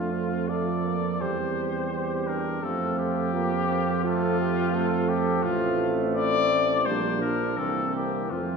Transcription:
Already playing: tuba F2, trombone A3, french horn D4, trumpet F4, flugelhorn F4
0.11 french horn C4
0.48 trombone F3, french horn A3, flugelhorn A4, trumpet D5
0.85 french horn A#3
1.21 tuba E2, trombone G3, french horn C4, flugelhorn G4, trumpet C5
1.92 french horn C4, flugelhorn G4
2.27 french horn D4, trumpet A#4
2.63 tuba F2, trombone A3, french horn C4, flugelhorn F4, trumpet A4
2.98 trumpet G4
3.33 trombone A#3, french horn C4, flugelhorn F4
3.70 trombone C4
4.04 french horn A3, trumpet F4, flugelhorn A4
4.39 flugelhorn G4
4.74 trombone A3, french horn C4, flugelhorn A4
5.08 trumpet G4
5.43 tuba A1, trombone A3, french horn C4, trumpet F4, flugelhorn F4
6.16 flugelhorn E4, trumpet D5
6.85 tuba A#1, trombone G3, french horn A#3, flugelhorn D4, trumpet C5
7.21 trombone F3, trumpet A#4
7.57 tuba C2, trombone E3, french horn A#3, flugelhorn C4, trumpet A4
7.94 trumpet G4
8.31 tuba F2, trombone F3, french horn A3, flugelhorn C4, trumpet F4

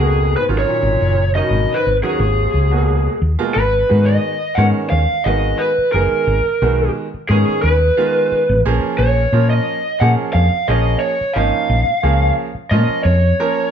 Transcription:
Already playing: fingered electric bass C#2, bass clarinet F2, lead electric guitar G#4
0.00 grand piano B2 G#3 A#3 F#4
0.37 bass clarinet G#2, lead electric guitar B4
0.49 fingered electric bass G#1, grand piano D#3 F#3 C#4 F4
0.58 lead electric guitar C#5
0.63 bass clarinet A#2
0.83 fingered electric bass G#1
1.01 fingered electric bass F#1
1.35 bass clarinet B2, grand piano D#3 F#3 C#4 D#4, lead electric guitar D#5
1.51 fingered electric bass G#1
1.74 bass clarinet G#2, lead electric guitar B4
1.86 fingered electric bass G#1
2.03 grand piano D#3 F#3 C#4 F#4, lead electric guitar G#4
2.07 bass clarinet D#2
2.20 fingered electric bass G#1
2.54 fingered electric bass C#2
2.71 grand piano B2 G#3 A#3 F#4
3.22 fingered electric bass D#2
3.39 grand piano B2 G#3 A#3 F4
3.54 fingered electric bass G#1, lead electric guitar B4
3.89 fingered electric bass G#2, grand piano D#3 G#3 B3 F#4
4.05 lead electric guitar D#5
4.55 fingered electric bass G#2, grand piano D#3 G#3 B3 C#4, lead electric guitar F#5
4.90 fingered electric bass D#2, lead electric guitar F5
5.24 fingered electric bass G#1, grand piano D#3 G#3 B3 F#4, lead electric guitar D#5
5.58 lead electric guitar B4
5.78 muted fingered electric bass stroke
5.92 fingered electric bass F#1, grand piano D#3 G#3 B3 G#4, lead electric guitar A#4
6.27 fingered electric bass G#1
6.62 fingered electric bass B1, grand piano D#3 G#3 B3 F#4
7.14 muted fingered electric bass stroke
7.29 fingered electric bass G#2, grand piano D#3 G#3 B3 C#4, lead electric guitar G#4
7.48 muted fingered electric bass stroke
7.62 fingered electric bass D#2, lead electric guitar B4
7.97 grand piano D#3 G#3 B3 F4
8.32 muted fingered electric bass stroke
8.49 fingered electric bass A1
8.65 fingered electric bass A#1, grand piano F3 A#3 C#4 G#4
8.98 fingered electric bass A#1, lead electric guitar C#5
9.32 fingered electric bass A#2, grand piano F3 A#3 C#4 F4
9.50 lead electric guitar D#5
10.00 fingered electric bass A#2, grand piano F3 A#3 C#4 G#4, lead electric guitar F#5
10.33 fingered electric bass F2, lead electric guitar F5
10.53 muted fingered electric bass stroke
10.68 fingered electric bass A#1, grand piano F3 A#3 C#4 G#4, lead electric guitar D#5
10.99 lead electric guitar C#5
11.21 muted fingered electric bass stroke
11.34 fingered electric bass G#1, grand piano F3 A#3 C#4 D#4, lead electric guitar F5
11.54 muted fingered electric bass stroke
11.69 fingered electric bass A#1
11.88 muted fingered electric bass stroke
12.03 fingered electric bass C#2, grand piano F3 A#3 C#4 G#4
12.55 muted fingered electric bass stroke
12.71 fingered electric bass A#2, grand piano F3 A#3 C#4 F4, lead electric guitar D#5
12.89 muted fingered electric bass stroke
13.04 fingered electric bass F2, lead electric guitar C#5
13.40 grand piano F3 A#3 C#4 A#4

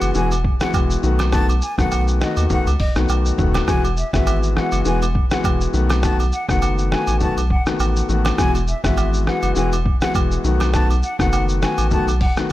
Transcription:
Already playing: grand piano E3 G#3 B3 F#4, flute F#5
0.01 sub bass F#1, high agogo, shaker
0.14 sub bass E1, grand piano E3 G#3 B3 F#4, flute G#5, shaker
0.31 high agogo, shaker
0.45 kick
0.60 grand piano E3 G#3 B3 F#4, flute F#5, cross-stick, shaker
0.73 sub bass E1, kick, high agogo, low woodblock, shaker
0.90 shaker
1.03 sub bass B1, grand piano D#3 A3 B3 F#4, shaker
1.19 cross-stick, high agogo, shaker
1.32 grand piano D#3 A3 B3 F#4, flute A5, kick, cross-stick, shaker
1.49 high agogo, shaker
1.62 flute G#5, shaker
1.78 sub bass B1, grand piano D#3 A3 B3 F#4, flute F#5, kick, cross-stick, shaker
1.91 high agogo, low woodblock, shaker
2.08 shaker
2.20 grand piano D#3 A3 B3 F#4, flute D#5, cross-stick, shaker
2.37 sub bass D#2, high agogo, shaker
2.50 grand piano D#3 A3 B3 F#4, flute F#5, kick, shaker
2.66 sub bass C#2, high agogo, shaker
2.80 flute D#5, kick, open hi-hat
2.95 sub bass B1, grand piano D#3 A3 B3 F#4, cross-stick, shaker
3.09 sub bass B1, high agogo, low woodblock, shaker
3.26 shaker
3.38 sub bass D#1, grand piano D#3 A3 B3 F#4, kick, mid tom, shaker
3.54 cross-stick, high agogo, shaker
3.68 sub bass E1, grand piano E3 G#3 B3 F#4, flute G#5, kick, cross-stick, shaker
3.84 high agogo, shaker
3.97 flute E5, shaker
4.13 sub bass G#1, grand piano E3 G#3 B3 F#4, flute E5, kick, cross-stick, shaker
4.27 high agogo, low woodblock, shaker
4.43 shaker
4.56 grand piano E3 G#3 B3 F#4, flute F#5, cross-stick
4.72 sub bass F#1, high agogo, shaker
4.85 sub bass E1, grand piano E3 G#3 B3 F#4, flute G#5, shaker
5.02 high agogo, shaker
5.15 kick
5.31 grand piano E3 G#3 B3 F#4, flute F#5, cross-stick, shaker
5.44 sub bass E1, kick, high agogo, low woodblock, shaker
5.61 shaker
5.73 sub bass B1, grand piano D#3 A3 B3 F#4, shaker
5.90 cross-stick, high agogo, shaker
6.03 grand piano D#3 A3 B3 F#4, flute A5, kick, cross-stick, shaker
6.20 high agogo, shaker
6.32 flute F#5, shaker
6.48 sub bass F#1, grand piano D#3 A3 B3 F#4, flute F#5, kick, cross-stick, shaker
6.62 high agogo, low woodblock, shaker
6.78 shaker
6.91 grand piano D#3 A3 B3 F#4, flute G#5, cross-stick
7.07 sub bass A1, high agogo, shaker
7.20 sub bass B1, grand piano D#3 A3 B3 F#4, flute A5, kick, shaker
7.37 high agogo, shaker
7.50 flute F#5, kick
7.66 grand piano D#3 A3 B3 F#4, cross-stick, shaker
7.79 sub bass A1, high agogo, low woodblock, shaker
7.96 shaker
8.09 sub bass A1, grand piano D#3 A3 B3 F#4, shaker
8.25 cross-stick, high agogo, shaker
8.38 sub bass E1, grand piano E3 G#3 B3 F#4, flute G#5, kick, cross-stick, shaker
8.55 high agogo, shaker
8.68 flute E5, shaker
8.84 sub bass G#1, grand piano E3 G#3 B3 F#4, flute E5, kick, cross-stick, shaker
8.97 high agogo, low woodblock, shaker
9.14 shaker
9.26 grand piano E3 G#3 B3 F#4, flute F#5, cross-stick
9.42 sub bass F#1, high agogo, shaker
9.56 sub bass E1, grand piano E3 G#3 B3 F#4, flute G#5, shaker
9.72 high agogo, shaker
9.86 kick
10.01 grand piano E3 G#3 B3 F#4, flute F#5, cross-stick, shaker
10.14 sub bass E1, kick, high agogo, low woodblock, shaker
10.31 shaker
10.44 sub bass B1, grand piano D#3 A3 B3 F#4, shaker
10.60 cross-stick, high agogo, shaker
10.73 grand piano D#3 A3 B3 F#4, flute A5, kick, cross-stick, shaker
10.90 high agogo, shaker
11.03 flute F#5, shaker
11.19 sub bass F#1, grand piano D#3 A3 B3 F#4, flute F#5, kick, cross-stick, shaker
11.32 high agogo, low woodblock, shaker
11.49 shaker
11.62 grand piano D#3 A3 B3 F#4, flute G#5, cross-stick, shaker
11.78 sub bass A1, high agogo, shaker
11.91 sub bass B1, grand piano D#3 A3 B3 F#4, flute A5, kick, shaker
12.08 high agogo, shaker
12.21 flute F#5, kick, open hi-hat
12.36 grand piano D#3 A3 B3 F#4, cross-stick, shaker

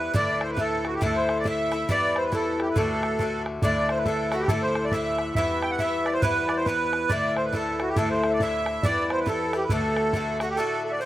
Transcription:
Already playing: upright bass E2, bouzouki G2 E3 B3 E4, accordion B4, flute B4, harp B4 D5 E5 F#5
0.14 upright bass D2, bouzouki A2 D3 A3 E4, flute D5, accordion D5, harp D5, bodhran
0.41 flute C5, harp C5, accordion C5, bodhran
0.50 harp B4, flute B4, accordion B4
0.56 bouzouki A2 D3 A3 E4, harp A4, flute A4, accordion A4, bodhran
0.85 harp F#4, flute F#4, accordion F#4, bodhran
0.94 harp G4, flute G4, accordion G4
1.01 upright bass D2, bouzouki A2 D3 A3 E4, harp A4, flute A4, accordion A4, bodhran
1.15 harp C5, flute C5, accordion C5
1.29 bodhran
1.37 harp D5, flute D5, accordion D5
1.44 bouzouki A2 D3 A3 E4, harp E5, flute E5, bodhran
1.48 accordion E5
1.72 bouzouki D3 A3 E4, bodhran
1.85 bouzouki G2, flute E5, bodhran
1.89 upright bass E2, bouzouki E3 B3 E4, flute D5, harp D5, accordion D5
2.15 flute C5, harp C5, accordion C5, bodhran
2.24 flute B4, harp B4, accordion B4
2.32 bouzouki G2 E3 B3 E4, flute A4, harp A4, accordion A4, bodhran
2.60 flute G4, harp G4, accordion G4, bodhran
2.67 flute B4, harp B4, accordion B4
2.74 upright bass D2, bouzouki A2 D3 A3 F#4, flute A4, harp A4, accordion A4, bodhran
3.03 bodhran
3.19 bouzouki A2 D3 A3 F#4, bodhran
3.46 bodhran
3.61 upright bass D2, bouzouki A2 D3 A3 E4, flute D5, accordion D5, harp D5, bodhran
3.89 flute C5, harp C5, accordion C5, bodhran
3.97 harp B4, accordion B4, flute B4
4.05 bouzouki A2 D3 A3 E4, harp A4, flute A4, accordion A4, bodhran
4.32 bouzouki D3 A3 E4, flute F#4, harp F#4, accordion F#4, bodhran
4.41 harp G4, accordion G4
4.48 upright bass D2, bouzouki A2 D3 A3 E4, accordion A4, flute A4, harp A4, bodhran
4.62 harp C5, accordion C5, flute C5
4.75 bodhran
4.84 accordion D5, flute D5
4.92 bouzouki A2 D3 A3, accordion E5, flute E5, harp E5, bodhran
4.96 bouzouki E4
5.18 harp F#5, bodhran
5.35 upright bass E2, bouzouki G2 E3 B3 E4, flute E5, accordion E5, harp E5, bodhran
5.63 accordion G5, harp G5, bodhran
5.71 accordion F#5, flute F#5, harp F#5
5.79 bouzouki G2 E3 B3 E4, accordion E5, harp E5, flute E5, bodhran
6.05 accordion D5, flute D5, harp D5, bodhran
6.13 accordion C5, flute C5, harp C5
6.22 upright bass E2, bouzouki G2 E3 B3 E4, accordion B4, flute B4, harp B4, bodhran
6.48 accordion D5, flute D5, harp D5, bodhran
6.57 accordion C5, flute C5, harp C5
6.65 bouzouki G2 E3 B3 E4, accordion B4, flute B4, harp B4, bodhran
6.93 bodhran
7.09 upright bass D2, bouzouki A2 D3 A3 E4, accordion D5, flute D5, harp D5, bodhran
7.37 accordion C5, flute C5, harp C5, bodhran
7.45 harp B4, accordion B4, flute B4
7.53 bouzouki A2 D3 A3 E4, harp A4, flute A4, accordion A4, bodhran
7.80 harp F#4, accordion F#4, bodhran
7.88 harp G4, flute G4, accordion G4
7.96 upright bass D2, bouzouki A2 D3 A3 E4, harp A4, accordion A4, flute A4, bodhran
8.10 flute C5, harp C5, accordion C5
8.24 bodhran
8.31 flute D5, harp D5, accordion D5 E5
8.39 bouzouki A2 D3 A3, flute E5, harp E5, accordion E5, bodhran
8.43 bouzouki E4
8.66 bodhran
8.83 upright bass E2, bouzouki G2 E3 B3 E4, flute D5, accordion D5, harp D5, bodhran
9.10 flute C5, harp C5, accordion C5, bodhran
9.19 harp B4, accordion B4
9.26 bouzouki G2 E3 B3 E4, flute A4, harp A4, accordion A4, bodhran
9.53 bouzouki E3 B3 E4, flute G4, harp G4, accordion G4, bodhran
9.61 flute B4, harp B4, accordion B4
9.69 upright bass D2, bouzouki A2 D3 A3 F#4, flute A4, harp A4, accordion A4, bodhran
9.97 bodhran
10.13 bouzouki A2 D3 A3 F#4, bodhran
10.40 bouzouki A3 F#4, accordion F#4, bodhran
10.44 bouzouki D3
10.50 accordion G4
10.56 bouzouki A2 D3 A3 F#4, accordion A4
10.84 accordion A4
10.90 accordion D5 E5
11.00 bouzouki A2 D3, accordion C5

